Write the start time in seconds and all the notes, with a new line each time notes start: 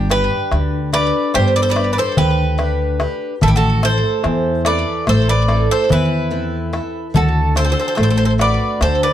Already playing: G1 G3
0.09 D4 G4 B4, darbuka tek
0.31 darbuka tek
0.52 D2 D3, darbuka tek
0.92 D4 G4 B4 D5, darbuka tek
1.34 G1 G3 G4 C5, darbuka tek
1.56 B4 D5
1.62 A4 C5
1.70 B4 D5
1.75 D4 G4 B4, darbuka tek
1.93 B4 D5
1.98 A4 C5
2.17 D2 D3 G4 B4, darbuka dum
2.58 D4 G4 B4, darbuka tek
3.00 D4 G4 B4, darbuka tek
3.41 A1 A3 E4 A4, darbuka dum
3.48 E4 G4
3.56 F#4 A4
3.62 darbuka tek
3.83 E4 A4 C5, darbuka tek
4.03 darbuka tek
4.24 E2 E3, darbuka tek
4.65 C4 E4 A4 B4 D5, darbuka tek
5.07 A1 A3 A4 C5, darbuka tek
5.29 B4 D5
5.48 C4 E4 A4, darbuka tek
5.71 A4 C5
5.89 E2 E3 E4 B4, darbuka dum
6.30 C4 E4 A4
6.73 E4 A4 E5, darbuka tek
7.14 D2 D3 F#4 A4, darbuka dum
7.35 darbuka tek
7.55 C4 D4 F#4 A4 C5, darbuka tek
7.64 A4 C5
7.72 A4 C5
7.76 C5, darbuka tek
7.81 A4
7.88 A4 C5
7.95 A1 A3 A4 C5, darbuka tek
8.03 A4 C5
8.10 A4 C5
8.17 A4 C5
8.25 A4 C5
8.39 C4 D4 F#4 B4 D5, darbuka tek
8.81 D2 D3 A4 C5, darbuka tek
9.03 B4 D5